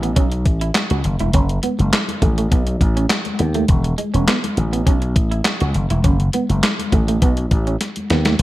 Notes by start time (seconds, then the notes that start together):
Already playing: A1
0.03 B3, closed hi-hat
0.16 B1 C#4, kick, closed hi-hat, muted conga
0.32 muted clean electric guitar stroke, closed hi-hat
0.45 A1, kick, closed hi-hat, muted conga
0.61 E4, closed hi-hat
0.75 snare, clap, closed hi-hat, muted conga
0.90 C#2 F#4, closed hi-hat, high conga
1.04 F#1, muted clean electric guitar stroke, closed hi-hat, muted conga, low conga
1.19 E1 E4, closed hi-hat, high conga
1.33 F#1 C#4, kick, closed hi-hat, muted conga, low conga
1.49 closed hi-hat
1.63 B3, closed hi-hat, muted conga, high conga
1.79 F#1, muted clean electric guitar stroke, closed hi-hat, high conga
1.93 muted clean electric guitar stroke, snare, clap, closed hi-hat
2.08 closed hi-hat, high conga
2.22 A1 A3, kick, closed hi-hat, low conga
2.38 A3, closed hi-hat
2.52 B1 B3, kick, closed hi-hat
2.67 muted clean electric guitar stroke, closed hi-hat
2.81 A1, kick, closed hi-hat
2.97 C#4, closed hi-hat
3.10 muted clean electric guitar stroke, snare, clap, closed hi-hat
3.25 closed hi-hat, high conga
3.39 D#2 B3, closed hi-hat, low conga
3.54 A3, closed hi-hat, high conga
3.68 E1, kick, closed hi-hat, low conga
3.84 muted clean electric guitar stroke, closed hi-hat
3.98 G#3, closed hi-hat, high conga
4.14 E1 C#4, closed hi-hat, high conga
4.28 B3, snare, clap, closed hi-hat
4.43 muted clean electric guitar stroke, closed hi-hat, high conga
4.57 A1, closed hi-hat, low conga
4.73 B3, closed hi-hat
4.87 B1 C#4, kick, closed hi-hat, muted conga
5.02 muted clean electric guitar stroke, closed hi-hat
5.16 A1, kick, closed hi-hat
5.31 E4, closed hi-hat
5.45 snare, clap, closed hi-hat, muted conga
5.60 C#2 F#4, closed hi-hat, high conga
5.74 F#1, muted clean electric guitar stroke, closed hi-hat, muted conga, low conga
5.90 E1 E4, closed hi-hat, high conga
6.04 F#1 C#4, kick, closed hi-hat, low conga
6.20 closed hi-hat
6.33 B3, closed hi-hat, muted conga, high conga
6.49 F#1, muted clean electric guitar stroke, closed hi-hat, high conga
6.63 muted clean electric guitar stroke, snare, clap, closed hi-hat, muted conga
6.79 closed hi-hat, high conga
6.92 A1 A3, kick, closed hi-hat, muted conga, low conga
7.08 A3, closed hi-hat
7.22 B1 B3, kick, closed hi-hat, muted conga
7.37 muted clean electric guitar stroke, closed hi-hat
7.51 A1, kick, closed hi-hat, muted conga
7.67 C#4, closed hi-hat
7.81 muted clean electric guitar stroke, snare, closed hi-hat, muted conga
7.96 closed hi-hat, high conga
8.10 D#2 B3, snare, closed hi-hat, muted conga, low conga
8.25 A3, snare, closed hi-hat, high conga